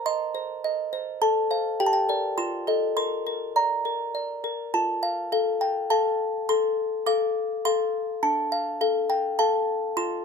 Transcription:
0.00 1.17 A#4 medium
0.00 0.23 C5 soft
0.06 0.52 D#5 soft
0.06 1.18 C6 medium
0.35 0.81 C5 soft
0.64 1.10 D#5 soft
0.93 1.22 C5 soft
1.22 1.78 A4 medium
1.22 1.77 A5 medium
1.51 1.77 C5 soft
1.51 1.77 F5 soft
1.80 2.36 G4 medium
1.80 1.87 G5 medium
1.86 1.93 A5 medium
1.93 2.36 G5 medium
2.09 2.35 A#4 soft
2.09 2.35 D5 soft
2.38 2.95 F4 medium
2.38 2.94 C6 medium
2.67 2.94 A4 soft
2.67 2.94 D#5 soft
2.97 3.25 A#4 medium
2.97 3.53 C6 medium
3.27 3.73 A#4 soft
3.56 4.03 D5 soft
3.56 4.12 A#5 medium
3.85 4.32 A#4 soft
4.15 4.62 D5 soft
4.44 4.73 A#4 soft
4.74 5.30 F4 soft
4.74 5.02 A5 medium
5.03 5.31 F5 medium
5.32 5.86 A4 soft
5.32 5.86 F5 soft
5.61 5.89 G5 medium
5.90 6.44 A4 soft
5.90 6.45 F5 soft
5.90 6.46 A5 medium
6.49 7.05 A4 medium
6.49 7.05 C6 medium
7.06 7.61 A4 soft
7.06 7.61 F5 soft
7.06 7.62 D6 medium
7.65 8.19 A4 soft
7.65 8.19 F5 soft
7.65 8.21 C6 medium
8.23 8.79 D4 medium
8.23 8.51 A5 medium
8.52 8.80 F5 medium
8.81 9.35 A4 soft
8.81 9.35 F5 medium
9.10 9.38 G5 medium
9.39 9.93 A4 soft
9.39 9.93 F5 medium
9.39 9.95 A5 medium
9.97 10.25 F4 medium
9.97 10.25 C6 medium

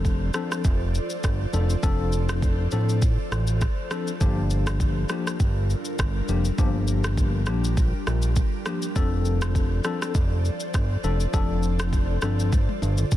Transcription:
0.00 0.31 F1 loud
0.00 0.28 F3 medium
0.00 4.17 F3 medium
0.00 0.28 C4 medium
0.00 0.28 D4 medium
0.00 8.92 F4 medium
0.00 0.28 A4 loud
0.00 6.54 A4 medium
0.00 4.17 C5 medium
0.00 4.17 D5 medium
0.05 kick medium
0.05 shaker medium
0.34 0.62 F3 medium
0.34 0.62 C4 medium
0.34 0.62 D4 medium
0.34 0.62 A4 medium
0.34 cross-stick medium
0.34 shaker soft
0.52 cross-stick medium
0.52 shaker medium
0.65 1.00 F1 loud
0.65 kick loud
0.65 shaker medium
0.95 shaker soft
1.10 shaker medium
1.24 1.47 G1 medium
1.24 kick medium
1.24 cross-stick medium
1.24 shaker medium
1.53 1.76 F1 loud
1.53 1.72 F3 medium
1.53 1.72 C4 medium
1.53 1.72 D4 medium
1.53 1.73 A4 medium
1.53 shaker soft
1.70 shaker medium
1.83 2.68 F1 loud
1.83 2.66 F3 medium
1.83 2.66 C4 medium
1.83 2.66 D4 medium
1.83 2.66 A4 loud
1.83 kick loud
1.83 shaker medium
2.12 shaker medium
2.29 cross-stick loud
2.29 shaker medium
2.42 kick medium
2.42 shaker medium
2.71 3.18 A1 medium
2.71 3.00 F3 medium
2.71 3.00 C4 medium
2.71 3.00 D4 medium
2.71 3.00 A4 medium
2.71 shaker soft
2.89 shaker medium
3.02 kick loud
3.02 shaker medium
3.32 3.67 A1 loud
3.32 cross-stick medium
3.32 shaker soft
3.47 shaker medium
3.61 kick medium
3.61 cross-stick medium
3.61 shaker medium
3.91 4.10 F3 medium
3.91 4.10 C4 medium
3.91 4.10 D4 medium
3.91 4.10 A4 medium
3.91 cross-stick loud
3.91 shaker soft
4.08 shaker medium
4.21 5.06 G1 loud
4.21 5.03 F3 medium
4.21 8.92 G3 medium
4.21 5.03 A#3 medium
4.21 8.92 D4 medium
4.21 5.03 D4 medium
4.21 5.04 G4 medium
4.21 8.92 A#4 medium
4.21 kick loud
4.21 shaker medium
4.50 shaker medium
4.67 cross-stick loud
4.67 shaker medium
4.80 kick medium
4.80 shaker medium
5.09 5.37 F3 medium
5.09 5.37 A#3 medium
5.09 5.38 D4 medium
5.09 5.38 G4 medium
5.09 cross-stick medium
5.09 shaker soft
5.27 cross-stick medium
5.27 shaker medium
5.40 5.75 G1 loud
5.40 kick loud
5.40 shaker medium
5.70 shaker soft
5.85 shaker medium
5.99 6.22 G1 loud
5.99 kick medium
5.99 cross-stick loud
5.99 shaker medium
6.28 6.52 F1 medium
6.28 6.48 F3 medium
6.28 6.48 A#3 medium
6.28 6.48 D4 medium
6.28 6.48 G4 medium
6.28 shaker soft
6.45 shaker medium
6.58 7.49 G1 loud
6.58 7.41 F3 medium
6.58 7.41 A#3 medium
6.58 7.41 D4 medium
6.58 8.94 G4 medium
6.58 7.41 G4 medium
6.58 kick loud
6.58 shaker medium
6.87 shaker medium
7.04 cross-stick loud
7.04 shaker medium
7.17 kick loud
7.17 shaker medium
7.46 7.93 A#1 medium
7.46 7.75 F3 medium
7.46 7.75 A#3 medium
7.46 7.75 D4 medium
7.46 7.75 G4 medium
7.46 cross-stick medium
7.46 shaker soft
7.64 shaker medium
7.77 kick loud
7.77 shaker medium
8.07 8.42 A#1 medium
8.07 cross-stick medium
8.07 shaker soft
8.22 shaker medium
8.36 kick medium
8.36 shaker medium
8.66 8.85 F3 medium
8.66 8.85 A#3 medium
8.66 8.85 D4 medium
8.66 8.85 G4 medium
8.66 cross-stick loud
8.66 shaker soft
8.82 shaker medium
8.95 9.81 F1 loud
8.95 13.17 F3 medium
8.95 9.79 F3 medium
8.95 9.79 C4 medium
8.95 9.79 D4 medium
8.95 13.17 F4 medium
8.95 13.17 A4 medium
8.95 9.79 A4 loud
8.95 13.17 C5 medium
8.95 13.17 D5 medium
8.95 kick loud
8.95 shaker medium
9.25 shaker medium
9.42 cross-stick loud
9.42 shaker medium
9.55 kick medium
9.55 shaker medium
9.84 10.12 F3 medium
9.84 10.12 C4 medium
9.84 10.13 D4 medium
9.84 10.13 A4 medium
9.84 cross-stick medium
9.84 shaker soft
10.02 cross-stick medium
10.02 shaker medium
10.15 10.50 F1 loud
10.15 kick loud
10.15 shaker medium
10.45 shaker soft
10.60 shaker medium
10.74 10.97 G1 loud
10.74 kick medium
10.74 cross-stick medium
10.74 shaker medium
11.04 11.27 F1 medium
11.04 11.23 F3 medium
11.04 11.23 C4 medium
11.04 11.23 D4 medium
11.04 11.23 A4 medium
11.04 shaker soft
11.20 shaker medium
11.33 12.19 F1 loud
11.33 12.16 F3 medium
11.33 12.16 C4 medium
11.33 12.16 D4 medium
11.33 12.16 A4 loud
11.33 kick loud
11.33 shaker medium
11.63 shaker medium
11.79 cross-stick loud
11.79 shaker medium
11.93 kick loud
11.93 shaker medium
12.22 12.68 G1 medium
12.22 12.50 F3 medium
12.22 12.50 C4 medium
12.22 12.50 D4 medium
12.22 12.50 A4 medium
12.22 cross-stick medium
12.22 shaker soft
12.40 shaker medium
12.52 kick loud
12.52 high tom medium
12.52 shaker medium
12.69 high tom medium
12.82 13.05 G1 loud
12.82 mid tom medium
12.82 shaker soft
12.98 mid tom medium
12.98 shaker medium
13.11 13.17 F1 loud
13.11 kick medium
13.11 mid tom medium
13.11 shaker medium

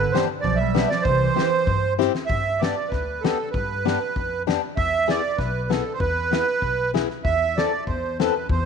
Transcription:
0.00 0.13 D3 loud
0.00 0.14 B4 loud
0.12 0.28 E3 medium
0.12 0.27 B3 medium
0.12 0.28 D4 medium
0.12 0.28 G4 medium
0.12 0.25 C5 medium
0.12 snare medium
0.12 hi-hat pedal soft
0.41 0.84 B1 loud
0.41 0.58 F3 medium
0.41 0.59 D5 medium
0.41 kick medium
0.56 0.89 E5 medium
0.60 0.88 G3 medium
0.75 0.88 B3 medium
0.75 0.88 D4 medium
0.75 0.88 G4 medium
0.75 snare medium
0.75 hi-hat pedal soft
0.88 1.03 F3 medium
0.88 1.04 D5 loud
0.88 snare medium
1.02 1.26 C2 loud
1.02 1.94 E3 medium
1.02 1.94 C5 loud
1.02 kick medium
1.36 1.49 C4 medium
1.36 1.49 E4 medium
1.36 1.50 G4 medium
1.36 snare medium
1.36 hi-hat pedal soft
1.67 2.07 G2 loud
1.67 kick medium
1.99 2.12 C4 medium
1.99 2.12 E4 medium
1.99 2.12 G4 medium
1.99 snare soft
1.99 hi-hat pedal medium
2.15 snare medium
2.26 2.70 G2 medium
2.26 2.61 E5 loud
2.26 kick medium
2.59 2.75 B3 medium
2.59 2.75 D4 medium
2.59 2.75 G4 medium
2.59 2.90 D5 medium
2.59 snare medium
2.88 3.32 D2 medium
2.88 3.23 B4 medium
2.88 kick medium
2.88 snare soft
3.21 3.37 B3 medium
3.21 3.37 D4 medium
3.21 3.49 A4 medium
3.21 snare medium
3.25 3.37 G4 medium
3.51 3.94 G2 medium
3.51 4.42 B4 medium
3.51 kick medium
3.85 3.99 B3 medium
3.85 3.99 D4 medium
3.85 3.99 G4 medium
3.85 snare medium
4.16 4.56 F2 medium
4.16 kick medium
4.47 4.60 B3 medium
4.47 4.60 D4 medium
4.47 4.60 G4 medium
4.47 snare medium
4.76 5.17 E2 loud
4.76 5.10 E5 loud
4.76 kick medium
5.08 5.21 B3 medium
5.08 5.21 E4 medium
5.08 5.21 G#4 medium
5.08 5.39 D5 loud
5.08 snare medium
5.38 5.78 B1 loud
5.38 5.71 B4 medium
5.38 kick medium
5.38 snare soft
5.69 5.83 B3 medium
5.69 5.83 E4 medium
5.69 5.83 G#4 medium
5.69 5.93 A4 medium
5.69 snare medium
5.93 5.99 C5 medium
6.00 6.41 E2 medium
6.00 6.91 B4 loud
6.00 kick medium
6.31 6.45 B3 medium
6.31 6.46 E4 soft
6.31 6.46 G#4 medium
6.31 snare medium
6.62 7.03 B1 medium
6.62 kick medium
6.94 7.08 B3 medium
6.94 7.08 E4 medium
6.94 7.08 G#4 medium
6.94 snare medium
7.10 snare soft
7.24 7.65 E2 medium
7.24 7.58 E5 loud
7.24 kick medium
7.57 7.71 C4 medium
7.57 7.71 E4 medium
7.57 7.71 A4 medium
7.57 7.84 D5 medium
7.57 snare medium
7.87 8.28 E2 medium
7.87 8.17 C5 medium
7.87 kick medium
8.20 8.33 C4 medium
8.20 8.33 E4 soft
8.20 8.33 A4 medium
8.20 8.47 B4 medium
8.20 snare medium
8.49 8.65 E2 loud
8.49 8.65 C5 medium
8.49 kick medium

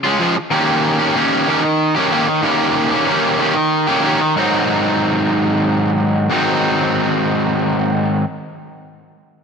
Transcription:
0.03 0.19 G#3 medium
0.03 0.21 C#4 medium
0.03 0.21 F4 medium
0.19 0.36 F3 medium
0.19 0.35 G#3 medium
0.19 0.36 C#4 medium
0.19 0.35 F4 loud
0.36 muted overdriven electric guitar stroke soft
0.51 1.14 D#3 medium
0.51 1.01 A#3 medium
0.51 1.00 C#4 medium
0.51 0.98 G4 loud
0.99 1.15 A#3 medium
0.99 1.16 C#4 medium
0.99 1.17 G4 medium
1.15 1.46 D#3 loud
1.15 1.47 A#3 loud
1.15 1.48 C#4 loud
1.15 1.49 G4 loud
1.47 1.95 D#3 medium
1.47 1.63 A#3 medium
1.47 1.62 C#4 medium
1.47 1.62 G4 medium
1.63 muted overdriven electric guitar stroke medium
1.95 2.11 A#3 medium
1.95 2.12 C#4 medium
1.95 2.12 G4 medium
2.11 2.42 D#3 medium
2.11 2.28 A#3 medium
2.11 2.27 C#4 medium
2.11 2.27 G4 medium
2.28 muted overdriven electric guitar stroke medium
2.43 3.06 D#3 loud
2.43 2.93 A#3 loud
2.43 2.91 C#4 loud
2.43 2.90 G4 loud
2.91 3.08 A#3 medium
2.91 3.08 C#4 medium
2.91 3.09 G4 medium
3.08 3.38 D#3 loud
3.08 3.39 A#3 loud
3.08 3.40 C#4 loud
3.08 3.41 G4 loud
3.39 3.88 D#3 medium
3.39 3.55 A#3 medium
3.39 3.55 C#4 medium
3.39 3.54 G4 medium
3.56 muted overdriven electric guitar stroke medium
3.87 4.04 A#3 medium
3.87 4.05 C#4 medium
3.87 4.06 G4 medium
4.04 4.34 D#3 medium
4.04 4.20 A#3 medium
4.04 4.20 C#4 medium
4.04 4.20 G4 medium
4.21 muted overdriven electric guitar stroke medium
4.36 6.28 G#2 medium
4.36 6.29 D#3 soft
4.36 6.31 F#3 medium
4.36 6.30 C4 medium
4.36 6.30 D#4 medium
6.30 8.23 G#2 medium
6.30 8.24 D#3 soft
6.30 8.24 F#3 soft
6.30 8.24 C4 medium
6.30 8.25 D#4 medium

